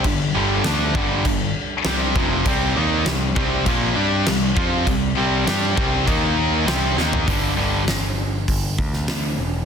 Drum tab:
CC |x---x---x---x---|x---x---x---x---|x---x---x---x---|----------------|
HH |----------------|----------------|----------------|o---o---o---o---|
SD |----o-------o---|----o-------o---|----o-------o-o-|----o------oo---|
FT |----------------|----------------|---------------o|----------------|
BD |o-----o-o-----o-|o-----o-o-----o-|o-----o-o-------|o-------o-o-----|